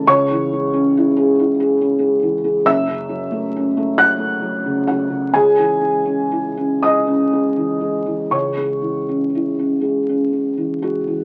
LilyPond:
<<
  \new Staff \with { instrumentName = "Felt piano" } { \time 6/8 \key cis \minor \tempo 4. = 42 <cis'' cis'''>2. | <e'' e'''>4. <fis'' fis'''>4 <fis' fis''>8 | <gis' gis''>4. <dis'' dis'''>4. | <cis'' cis'''>4. r4 fis'8 | }
  \new Staff \with { instrumentName = "Felt piano" } { \clef bass \time 6/8 \key cis \minor <cis, cis>16 e16 gis16 cis'16 e'16 gis'16 e'16 gis'16 cis'16 gis16 e16 gis16 | <fis,, fis,>16 cis16 fis16 a16 cis'16 a16 fis16 a16 fis16 cis16 fis16 cis16 | <cis, cis>16 e16 gis16 cis'16 e'16 cis'16 gis16 cis'16 gis16 e16 gis16 e16 | <cis, cis>16 gis16 e16 cis'16 e'16 cis'16 gis16 cis'16 gis16 e16 gis16 e16 | }
>>